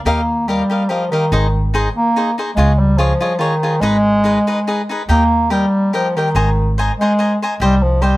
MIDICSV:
0, 0, Header, 1, 4, 480
1, 0, Start_track
1, 0, Key_signature, -3, "major"
1, 0, Tempo, 418410
1, 70, Time_signature, 3, 2, 24, 8
1, 9375, End_track
2, 0, Start_track
2, 0, Title_t, "Cavaquinho"
2, 0, Program_c, 0, 24
2, 67, Note_on_c, 0, 67, 66
2, 70, Note_on_c, 0, 70, 64
2, 76, Note_on_c, 0, 75, 82
2, 84, Note_on_c, 0, 77, 75
2, 227, Note_off_c, 0, 67, 0
2, 229, Note_off_c, 0, 70, 0
2, 232, Note_off_c, 0, 75, 0
2, 236, Note_off_c, 0, 77, 0
2, 551, Note_on_c, 0, 67, 53
2, 560, Note_on_c, 0, 75, 56
2, 561, Note_on_c, 0, 70, 56
2, 576, Note_on_c, 0, 77, 65
2, 711, Note_off_c, 0, 67, 0
2, 715, Note_off_c, 0, 75, 0
2, 716, Note_off_c, 0, 70, 0
2, 723, Note_off_c, 0, 77, 0
2, 799, Note_on_c, 0, 67, 46
2, 810, Note_on_c, 0, 70, 51
2, 811, Note_on_c, 0, 75, 52
2, 824, Note_on_c, 0, 77, 58
2, 941, Note_off_c, 0, 67, 0
2, 947, Note_off_c, 0, 70, 0
2, 947, Note_off_c, 0, 75, 0
2, 954, Note_off_c, 0, 77, 0
2, 1021, Note_on_c, 0, 67, 48
2, 1029, Note_on_c, 0, 70, 50
2, 1037, Note_on_c, 0, 77, 56
2, 1042, Note_on_c, 0, 75, 59
2, 1188, Note_off_c, 0, 67, 0
2, 1192, Note_off_c, 0, 70, 0
2, 1196, Note_off_c, 0, 77, 0
2, 1198, Note_off_c, 0, 75, 0
2, 1283, Note_on_c, 0, 67, 50
2, 1295, Note_on_c, 0, 70, 54
2, 1296, Note_on_c, 0, 75, 58
2, 1305, Note_on_c, 0, 77, 54
2, 1424, Note_off_c, 0, 67, 0
2, 1430, Note_off_c, 0, 70, 0
2, 1431, Note_off_c, 0, 75, 0
2, 1435, Note_off_c, 0, 77, 0
2, 1515, Note_on_c, 0, 63, 74
2, 1522, Note_on_c, 0, 72, 65
2, 1523, Note_on_c, 0, 68, 67
2, 1529, Note_on_c, 0, 75, 82
2, 1674, Note_off_c, 0, 63, 0
2, 1678, Note_off_c, 0, 72, 0
2, 1679, Note_off_c, 0, 68, 0
2, 1682, Note_off_c, 0, 75, 0
2, 1992, Note_on_c, 0, 63, 60
2, 2002, Note_on_c, 0, 68, 72
2, 2003, Note_on_c, 0, 72, 71
2, 2012, Note_on_c, 0, 75, 76
2, 2153, Note_off_c, 0, 63, 0
2, 2157, Note_off_c, 0, 68, 0
2, 2158, Note_off_c, 0, 72, 0
2, 2162, Note_off_c, 0, 75, 0
2, 2481, Note_on_c, 0, 63, 51
2, 2487, Note_on_c, 0, 68, 54
2, 2491, Note_on_c, 0, 72, 55
2, 2496, Note_on_c, 0, 75, 52
2, 2635, Note_off_c, 0, 63, 0
2, 2637, Note_off_c, 0, 68, 0
2, 2639, Note_off_c, 0, 72, 0
2, 2642, Note_off_c, 0, 75, 0
2, 2729, Note_on_c, 0, 63, 50
2, 2741, Note_on_c, 0, 68, 55
2, 2742, Note_on_c, 0, 72, 57
2, 2742, Note_on_c, 0, 75, 55
2, 2863, Note_off_c, 0, 63, 0
2, 2869, Note_off_c, 0, 68, 0
2, 2869, Note_off_c, 0, 72, 0
2, 2869, Note_off_c, 0, 75, 0
2, 2952, Note_on_c, 0, 65, 70
2, 2961, Note_on_c, 0, 68, 76
2, 2967, Note_on_c, 0, 73, 74
2, 2971, Note_on_c, 0, 75, 79
2, 3108, Note_off_c, 0, 65, 0
2, 3112, Note_off_c, 0, 68, 0
2, 3115, Note_off_c, 0, 73, 0
2, 3117, Note_off_c, 0, 75, 0
2, 3422, Note_on_c, 0, 68, 64
2, 3424, Note_on_c, 0, 65, 69
2, 3433, Note_on_c, 0, 73, 67
2, 3443, Note_on_c, 0, 75, 66
2, 3580, Note_off_c, 0, 68, 0
2, 3581, Note_off_c, 0, 65, 0
2, 3585, Note_off_c, 0, 73, 0
2, 3590, Note_off_c, 0, 75, 0
2, 3677, Note_on_c, 0, 65, 61
2, 3684, Note_on_c, 0, 68, 57
2, 3692, Note_on_c, 0, 75, 58
2, 3695, Note_on_c, 0, 73, 53
2, 3812, Note_off_c, 0, 65, 0
2, 3816, Note_off_c, 0, 68, 0
2, 3820, Note_off_c, 0, 75, 0
2, 3821, Note_off_c, 0, 73, 0
2, 3886, Note_on_c, 0, 65, 52
2, 3906, Note_on_c, 0, 68, 58
2, 3909, Note_on_c, 0, 73, 67
2, 3909, Note_on_c, 0, 75, 61
2, 4051, Note_off_c, 0, 65, 0
2, 4061, Note_off_c, 0, 68, 0
2, 4062, Note_off_c, 0, 73, 0
2, 4063, Note_off_c, 0, 75, 0
2, 4164, Note_on_c, 0, 65, 48
2, 4167, Note_on_c, 0, 68, 53
2, 4174, Note_on_c, 0, 73, 57
2, 4178, Note_on_c, 0, 75, 58
2, 4295, Note_off_c, 0, 65, 0
2, 4297, Note_off_c, 0, 68, 0
2, 4301, Note_off_c, 0, 73, 0
2, 4302, Note_off_c, 0, 75, 0
2, 4388, Note_on_c, 0, 63, 76
2, 4394, Note_on_c, 0, 68, 76
2, 4397, Note_on_c, 0, 71, 82
2, 4397, Note_on_c, 0, 75, 79
2, 4542, Note_off_c, 0, 63, 0
2, 4545, Note_off_c, 0, 68, 0
2, 4547, Note_off_c, 0, 71, 0
2, 4547, Note_off_c, 0, 75, 0
2, 4861, Note_on_c, 0, 63, 56
2, 4870, Note_on_c, 0, 68, 56
2, 4876, Note_on_c, 0, 71, 68
2, 4884, Note_on_c, 0, 75, 71
2, 5019, Note_off_c, 0, 63, 0
2, 5023, Note_off_c, 0, 68, 0
2, 5027, Note_off_c, 0, 71, 0
2, 5031, Note_off_c, 0, 75, 0
2, 5129, Note_on_c, 0, 68, 58
2, 5133, Note_on_c, 0, 63, 58
2, 5135, Note_on_c, 0, 71, 68
2, 5141, Note_on_c, 0, 75, 63
2, 5260, Note_off_c, 0, 68, 0
2, 5262, Note_off_c, 0, 63, 0
2, 5263, Note_off_c, 0, 71, 0
2, 5267, Note_off_c, 0, 75, 0
2, 5361, Note_on_c, 0, 63, 51
2, 5366, Note_on_c, 0, 68, 64
2, 5372, Note_on_c, 0, 71, 60
2, 5374, Note_on_c, 0, 75, 61
2, 5514, Note_off_c, 0, 63, 0
2, 5516, Note_off_c, 0, 68, 0
2, 5519, Note_off_c, 0, 71, 0
2, 5520, Note_off_c, 0, 75, 0
2, 5614, Note_on_c, 0, 63, 53
2, 5628, Note_on_c, 0, 68, 57
2, 5635, Note_on_c, 0, 71, 61
2, 5635, Note_on_c, 0, 75, 59
2, 5747, Note_off_c, 0, 63, 0
2, 5753, Note_off_c, 0, 68, 0
2, 5757, Note_off_c, 0, 71, 0
2, 5757, Note_off_c, 0, 75, 0
2, 5836, Note_on_c, 0, 67, 64
2, 5842, Note_on_c, 0, 79, 71
2, 5843, Note_on_c, 0, 70, 71
2, 5847, Note_on_c, 0, 75, 82
2, 5994, Note_off_c, 0, 67, 0
2, 5997, Note_off_c, 0, 70, 0
2, 5997, Note_off_c, 0, 79, 0
2, 5999, Note_off_c, 0, 75, 0
2, 6313, Note_on_c, 0, 67, 59
2, 6321, Note_on_c, 0, 70, 55
2, 6322, Note_on_c, 0, 75, 60
2, 6334, Note_on_c, 0, 79, 64
2, 6475, Note_off_c, 0, 67, 0
2, 6479, Note_off_c, 0, 70, 0
2, 6480, Note_off_c, 0, 75, 0
2, 6486, Note_off_c, 0, 79, 0
2, 6805, Note_on_c, 0, 67, 50
2, 6809, Note_on_c, 0, 70, 57
2, 6821, Note_on_c, 0, 75, 62
2, 6825, Note_on_c, 0, 79, 53
2, 6962, Note_off_c, 0, 67, 0
2, 6964, Note_off_c, 0, 70, 0
2, 6970, Note_off_c, 0, 75, 0
2, 6972, Note_off_c, 0, 79, 0
2, 7074, Note_on_c, 0, 67, 46
2, 7079, Note_on_c, 0, 70, 42
2, 7087, Note_on_c, 0, 79, 52
2, 7089, Note_on_c, 0, 75, 49
2, 7202, Note_off_c, 0, 67, 0
2, 7204, Note_off_c, 0, 70, 0
2, 7208, Note_off_c, 0, 79, 0
2, 7209, Note_off_c, 0, 75, 0
2, 7290, Note_on_c, 0, 72, 69
2, 7292, Note_on_c, 0, 75, 69
2, 7296, Note_on_c, 0, 80, 73
2, 7296, Note_on_c, 0, 82, 76
2, 7444, Note_off_c, 0, 72, 0
2, 7445, Note_off_c, 0, 75, 0
2, 7446, Note_off_c, 0, 80, 0
2, 7447, Note_off_c, 0, 82, 0
2, 7777, Note_on_c, 0, 72, 64
2, 7790, Note_on_c, 0, 80, 75
2, 7792, Note_on_c, 0, 75, 65
2, 7797, Note_on_c, 0, 82, 77
2, 7927, Note_off_c, 0, 72, 0
2, 7933, Note_off_c, 0, 80, 0
2, 7934, Note_off_c, 0, 75, 0
2, 7936, Note_off_c, 0, 82, 0
2, 8041, Note_on_c, 0, 72, 59
2, 8049, Note_on_c, 0, 80, 59
2, 8055, Note_on_c, 0, 75, 57
2, 8058, Note_on_c, 0, 82, 55
2, 8164, Note_off_c, 0, 72, 0
2, 8168, Note_off_c, 0, 80, 0
2, 8171, Note_off_c, 0, 75, 0
2, 8172, Note_off_c, 0, 82, 0
2, 8244, Note_on_c, 0, 72, 46
2, 8246, Note_on_c, 0, 75, 54
2, 8256, Note_on_c, 0, 80, 57
2, 8260, Note_on_c, 0, 82, 65
2, 8400, Note_off_c, 0, 72, 0
2, 8400, Note_off_c, 0, 75, 0
2, 8406, Note_off_c, 0, 80, 0
2, 8407, Note_off_c, 0, 82, 0
2, 8517, Note_on_c, 0, 72, 52
2, 8523, Note_on_c, 0, 75, 51
2, 8528, Note_on_c, 0, 80, 60
2, 8532, Note_on_c, 0, 82, 60
2, 8640, Note_off_c, 0, 72, 0
2, 8643, Note_off_c, 0, 75, 0
2, 8646, Note_off_c, 0, 80, 0
2, 8648, Note_off_c, 0, 82, 0
2, 8735, Note_on_c, 0, 67, 82
2, 8737, Note_on_c, 0, 79, 82
2, 8741, Note_on_c, 0, 72, 74
2, 8742, Note_on_c, 0, 75, 80
2, 8881, Note_off_c, 0, 67, 0
2, 8883, Note_off_c, 0, 79, 0
2, 8884, Note_off_c, 0, 72, 0
2, 8885, Note_off_c, 0, 75, 0
2, 9197, Note_on_c, 0, 67, 59
2, 9201, Note_on_c, 0, 72, 67
2, 9208, Note_on_c, 0, 75, 63
2, 9219, Note_on_c, 0, 79, 66
2, 9349, Note_off_c, 0, 67, 0
2, 9351, Note_off_c, 0, 72, 0
2, 9355, Note_off_c, 0, 75, 0
2, 9360, Note_off_c, 0, 79, 0
2, 9375, End_track
3, 0, Start_track
3, 0, Title_t, "Bass clarinet"
3, 0, Program_c, 1, 71
3, 58, Note_on_c, 1, 58, 81
3, 552, Note_on_c, 1, 55, 80
3, 569, Note_off_c, 1, 58, 0
3, 1024, Note_on_c, 1, 53, 76
3, 1041, Note_off_c, 1, 55, 0
3, 1268, Note_off_c, 1, 53, 0
3, 1275, Note_on_c, 1, 51, 80
3, 1942, Note_off_c, 1, 51, 0
3, 2251, Note_on_c, 1, 58, 96
3, 2698, Note_off_c, 1, 58, 0
3, 2930, Note_on_c, 1, 56, 100
3, 3199, Note_on_c, 1, 55, 85
3, 3217, Note_off_c, 1, 56, 0
3, 3416, Note_on_c, 1, 53, 85
3, 3433, Note_off_c, 1, 55, 0
3, 3889, Note_on_c, 1, 51, 85
3, 3907, Note_off_c, 1, 53, 0
3, 4370, Note_on_c, 1, 56, 113
3, 4387, Note_off_c, 1, 51, 0
3, 5606, Note_off_c, 1, 56, 0
3, 5840, Note_on_c, 1, 58, 100
3, 6321, Note_on_c, 1, 55, 89
3, 6339, Note_off_c, 1, 58, 0
3, 6805, Note_off_c, 1, 55, 0
3, 6815, Note_on_c, 1, 53, 83
3, 7068, Note_on_c, 1, 51, 84
3, 7085, Note_off_c, 1, 53, 0
3, 7765, Note_off_c, 1, 51, 0
3, 8027, Note_on_c, 1, 56, 104
3, 8471, Note_off_c, 1, 56, 0
3, 8728, Note_on_c, 1, 55, 96
3, 8978, Note_on_c, 1, 53, 84
3, 8995, Note_off_c, 1, 55, 0
3, 9205, Note_on_c, 1, 55, 89
3, 9222, Note_off_c, 1, 53, 0
3, 9375, Note_off_c, 1, 55, 0
3, 9375, End_track
4, 0, Start_track
4, 0, Title_t, "Upright bass"
4, 0, Program_c, 2, 32
4, 60, Note_on_c, 2, 39, 86
4, 693, Note_off_c, 2, 39, 0
4, 1511, Note_on_c, 2, 32, 101
4, 2136, Note_off_c, 2, 32, 0
4, 2945, Note_on_c, 2, 37, 101
4, 3565, Note_off_c, 2, 37, 0
4, 4374, Note_on_c, 2, 32, 96
4, 5004, Note_off_c, 2, 32, 0
4, 5832, Note_on_c, 2, 39, 86
4, 6464, Note_off_c, 2, 39, 0
4, 7281, Note_on_c, 2, 32, 94
4, 7905, Note_off_c, 2, 32, 0
4, 8717, Note_on_c, 2, 36, 93
4, 9332, Note_off_c, 2, 36, 0
4, 9375, End_track
0, 0, End_of_file